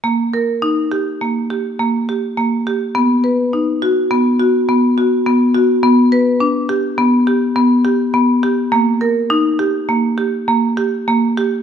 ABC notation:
X:1
M:5/4
L:1/8
Q:1/4=104
K:Gm
V:1 name="Marimba"
B, B E G B, G B, G B, G | =B, =B ^D ^F B, F B, F B, F | =B, =B D G B, G B, G B, G | B, B E G B, G B, G B, G |]